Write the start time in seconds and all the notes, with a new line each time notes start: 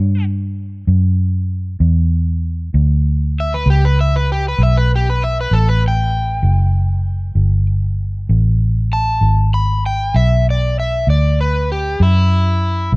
Already playing: G2 C#5
0.87 F#2
1.80 E2
2.74 D2
3.40 E5
3.54 B4
3.66 C#2
3.70 G4
3.85 B4
4.01 E5
4.16 B4
4.32 G4
4.48 B4
4.58 B1
4.63 E5
4.77 B4
4.96 G4
5.10 B4
5.24 E5
5.41 B4
5.51 A1 A4
5.69 B4
5.88 G5
6.43 F#1
7.35 G1
8.29 A1
8.93 A5
9.21 G#1
9.54 B5
9.86 G5
10.14 B1 E5
10.50 D5
10.80 E5
11.07 D2 D5
11.41 B4
11.72 G4
12.00 F#2 E4
12.92 B1